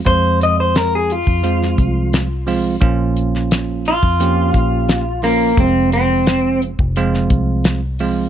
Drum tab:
HH |x-x-x-x-x-x-x-o-|x-x-x-x-x-x-x-o-|x-x-x-x-x-x-x-o-|
SD |----o----o--o---|---oo-------o---|----o----o--o---|
BD |o------o--o-----|o------o--o-----|o------o--o-----|